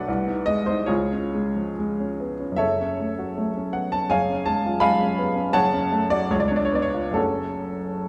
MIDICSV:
0, 0, Header, 1, 2, 480
1, 0, Start_track
1, 0, Key_signature, 3, "minor"
1, 0, Tempo, 801068
1, 526, Time_signature, 2, 2, 24, 8
1, 526, Tempo, 858369
1, 1486, Tempo, 774194
1, 1966, Tempo, 724638
1, 3406, Tempo, 779221
1, 3886, Tempo, 863309
1, 4866, End_track
2, 0, Start_track
2, 0, Title_t, "Upright piano"
2, 0, Program_c, 0, 0
2, 0, Control_c, 0, 64, 127
2, 0, Note_on_c, 0, 66, 65
2, 0, Note_on_c, 0, 71, 101
2, 0, Note_on_c, 0, 74, 97
2, 0, Note_on_c, 0, 78, 117
2, 49, Note_on_c, 0, 36, 76
2, 55, Control_c, 0, 64, 0
2, 61, Note_off_c, 0, 66, 0
2, 158, Control_c, 0, 64, 127
2, 161, Note_on_c, 0, 63, 61
2, 252, Note_off_c, 0, 71, 0
2, 252, Note_off_c, 0, 74, 0
2, 271, Note_off_c, 0, 78, 0
2, 274, Note_on_c, 0, 75, 111
2, 285, Note_on_c, 0, 56, 64
2, 350, Note_off_c, 0, 63, 0
2, 397, Note_on_c, 0, 72, 86
2, 398, Note_off_c, 0, 75, 0
2, 406, Note_on_c, 0, 63, 57
2, 479, Note_off_c, 0, 56, 0
2, 515, Note_off_c, 0, 36, 0
2, 517, Note_on_c, 0, 73, 90
2, 524, Note_on_c, 0, 65, 73
2, 525, Note_off_c, 0, 72, 0
2, 525, Note_on_c, 0, 68, 72
2, 530, Note_off_c, 0, 63, 0
2, 532, Note_on_c, 0, 37, 72
2, 536, Control_c, 0, 64, 0
2, 643, Control_c, 0, 64, 127
2, 661, Note_on_c, 0, 61, 56
2, 788, Note_on_c, 0, 56, 55
2, 852, Note_off_c, 0, 61, 0
2, 908, Note_on_c, 0, 53, 53
2, 976, Note_off_c, 0, 56, 0
2, 994, Note_off_c, 0, 65, 0
2, 994, Note_off_c, 0, 68, 0
2, 1013, Note_off_c, 0, 73, 0
2, 1035, Note_on_c, 0, 56, 54
2, 1096, Note_off_c, 0, 53, 0
2, 1153, Note_on_c, 0, 61, 52
2, 1218, Note_off_c, 0, 56, 0
2, 1266, Note_on_c, 0, 59, 44
2, 1335, Note_off_c, 0, 61, 0
2, 1376, Note_on_c, 0, 61, 48
2, 1378, Note_off_c, 0, 59, 0
2, 1444, Note_on_c, 0, 42, 59
2, 1467, Note_off_c, 0, 37, 0
2, 1469, Note_on_c, 0, 76, 102
2, 1476, Note_on_c, 0, 30, 60
2, 1476, Note_on_c, 0, 69, 76
2, 1478, Note_on_c, 0, 73, 80
2, 1488, Note_off_c, 0, 61, 0
2, 1496, Control_c, 0, 64, 0
2, 1599, Control_c, 0, 64, 127
2, 1614, Note_on_c, 0, 61, 53
2, 1736, Note_on_c, 0, 57, 49
2, 1805, Note_off_c, 0, 61, 0
2, 1852, Note_on_c, 0, 66, 53
2, 1923, Note_off_c, 0, 57, 0
2, 1972, Note_on_c, 0, 57, 54
2, 2042, Note_off_c, 0, 66, 0
2, 2096, Note_on_c, 0, 61, 48
2, 2163, Note_off_c, 0, 57, 0
2, 2176, Note_off_c, 0, 69, 0
2, 2177, Note_off_c, 0, 73, 0
2, 2198, Note_off_c, 0, 76, 0
2, 2205, Note_on_c, 0, 78, 81
2, 2212, Note_on_c, 0, 59, 44
2, 2284, Note_off_c, 0, 61, 0
2, 2325, Note_off_c, 0, 78, 0
2, 2329, Note_off_c, 0, 59, 0
2, 2331, Note_on_c, 0, 81, 95
2, 2341, Note_on_c, 0, 61, 53
2, 2394, Note_off_c, 0, 42, 0
2, 2413, Note_off_c, 0, 30, 0
2, 2448, Note_off_c, 0, 81, 0
2, 2448, Note_on_c, 0, 80, 104
2, 2451, Note_on_c, 0, 30, 62
2, 2452, Note_on_c, 0, 73, 77
2, 2453, Note_off_c, 0, 61, 0
2, 2455, Control_c, 0, 64, 0
2, 2455, Note_on_c, 0, 77, 80
2, 2460, Note_on_c, 0, 42, 63
2, 2578, Note_on_c, 0, 61, 55
2, 2580, Control_c, 0, 64, 127
2, 2673, Note_off_c, 0, 73, 0
2, 2675, Note_off_c, 0, 77, 0
2, 2686, Note_on_c, 0, 81, 105
2, 2687, Note_off_c, 0, 80, 0
2, 2694, Note_on_c, 0, 56, 53
2, 2766, Note_off_c, 0, 61, 0
2, 2823, Note_on_c, 0, 65, 62
2, 2884, Note_off_c, 0, 56, 0
2, 2915, Note_on_c, 0, 83, 115
2, 2922, Note_on_c, 0, 77, 97
2, 2925, Note_on_c, 0, 80, 91
2, 2928, Note_off_c, 0, 81, 0
2, 2930, Note_on_c, 0, 56, 62
2, 3007, Note_off_c, 0, 65, 0
2, 3052, Note_on_c, 0, 61, 63
2, 3119, Note_off_c, 0, 56, 0
2, 3168, Note_on_c, 0, 59, 59
2, 3239, Note_off_c, 0, 61, 0
2, 3279, Note_on_c, 0, 61, 61
2, 3286, Note_off_c, 0, 59, 0
2, 3377, Note_off_c, 0, 77, 0
2, 3379, Note_off_c, 0, 80, 0
2, 3383, Note_off_c, 0, 30, 0
2, 3387, Note_off_c, 0, 42, 0
2, 3399, Note_on_c, 0, 30, 72
2, 3399, Note_on_c, 0, 81, 127
2, 3400, Note_off_c, 0, 83, 0
2, 3400, Note_on_c, 0, 73, 96
2, 3402, Note_on_c, 0, 78, 105
2, 3404, Note_off_c, 0, 61, 0
2, 3406, Note_on_c, 0, 42, 79
2, 3417, Control_c, 0, 64, 0
2, 3521, Control_c, 0, 64, 127
2, 3523, Note_on_c, 0, 61, 68
2, 3639, Note_on_c, 0, 57, 65
2, 3715, Note_off_c, 0, 61, 0
2, 3736, Note_off_c, 0, 73, 0
2, 3737, Note_off_c, 0, 78, 0
2, 3751, Note_on_c, 0, 74, 110
2, 3759, Note_on_c, 0, 66, 68
2, 3760, Note_off_c, 0, 81, 0
2, 3835, Note_off_c, 0, 57, 0
2, 3868, Note_off_c, 0, 30, 0
2, 3872, Note_off_c, 0, 42, 0
2, 3876, Note_on_c, 0, 37, 87
2, 3879, Note_on_c, 0, 73, 95
2, 3880, Note_off_c, 0, 74, 0
2, 3884, Note_off_c, 0, 66, 0
2, 3898, Control_c, 0, 64, 0
2, 3929, Note_on_c, 0, 74, 92
2, 3930, Note_off_c, 0, 73, 0
2, 3973, Note_on_c, 0, 73, 86
2, 3979, Note_off_c, 0, 74, 0
2, 3991, Note_on_c, 0, 62, 65
2, 4011, Control_c, 0, 64, 127
2, 4018, Note_on_c, 0, 74, 87
2, 4025, Note_off_c, 0, 73, 0
2, 4068, Note_on_c, 0, 73, 88
2, 4073, Note_off_c, 0, 74, 0
2, 4108, Note_on_c, 0, 59, 62
2, 4122, Note_off_c, 0, 73, 0
2, 4125, Note_on_c, 0, 74, 81
2, 4164, Note_on_c, 0, 73, 96
2, 4176, Note_off_c, 0, 74, 0
2, 4180, Note_off_c, 0, 62, 0
2, 4229, Note_on_c, 0, 65, 57
2, 4302, Note_off_c, 0, 59, 0
2, 4325, Note_on_c, 0, 42, 60
2, 4331, Note_on_c, 0, 54, 48
2, 4336, Note_off_c, 0, 37, 0
2, 4336, Note_on_c, 0, 57, 47
2, 4340, Note_on_c, 0, 69, 88
2, 4345, Note_on_c, 0, 61, 67
2, 4347, Note_on_c, 0, 30, 59
2, 4347, Note_on_c, 0, 66, 67
2, 4348, Note_off_c, 0, 73, 0
2, 4353, Note_off_c, 0, 65, 0
2, 4367, Control_c, 0, 64, 0
2, 4485, Control_c, 0, 64, 127
2, 4866, Note_off_c, 0, 30, 0
2, 4866, Note_off_c, 0, 42, 0
2, 4866, Note_off_c, 0, 54, 0
2, 4866, Note_off_c, 0, 57, 0
2, 4866, Note_off_c, 0, 61, 0
2, 4866, Note_off_c, 0, 66, 0
2, 4866, Note_off_c, 0, 69, 0
2, 4866, End_track
0, 0, End_of_file